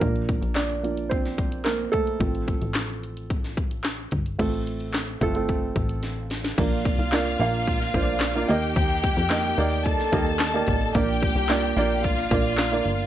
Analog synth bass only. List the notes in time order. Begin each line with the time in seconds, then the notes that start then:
0.01 A#1
0.42 A#1
2.20 A1
2.62 A1
4.12 G1
4.39 A1
5.21 G1
5.76 A1
6.58 A#1
6.98 C2
7.40 A#1
7.94 A#1
8.49 D#2
8.76 D#2
9.17 F2
9.58 D#2
10.13 D#2
10.68 A1
10.95 A#1
11.36 C2
11.77 A#1
12.31 A#1
12.85 G1